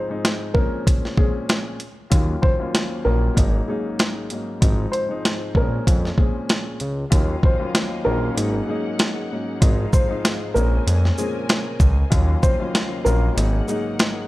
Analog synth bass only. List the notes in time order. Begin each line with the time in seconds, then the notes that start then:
2.12 D#2
3.06 A#1
3.37 G#1
4.62 G#1
5.55 A#1
5.87 F2
6.81 C#2
7.12 D#2
8.06 A#1
8.37 G#1
9.62 G#1
10.55 A#1
10.87 F2
11.80 C#2
12.12 D#2
13.06 A#1
13.37 G#1